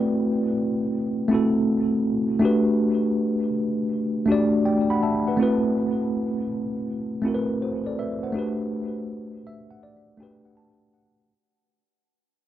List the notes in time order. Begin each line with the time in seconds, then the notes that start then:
Already playing: A3 C4 E4 F#4 B4 D5 G5
1.28 A3 C4 E4
1.33 F#4 A4
2.40 A3 D4 F#4
2.44 G4 B4
4.26 A3 D4 F#4
4.30 G4 D5
4.65 D5 G5
4.90 F#5 B5
5.03 E5 A5
5.27 B4 F#5
5.37 A3 C4 E4
5.41 F#4 B4
7.22 A3 C4 E4
7.26 F#4 A#4
7.34 B4
7.62 F#4 C5
7.86 A4 D5
7.99 B4 E5
8.23 C5 F#5
8.33 A3 D4 F#4
8.37 G4 B4
9.47 E5
9.71 F#5
9.83 D5
10.17 A3 D4 F#4 G5
10.22 G4 B4
10.45 F#5
10.57 A5
10.94 F#5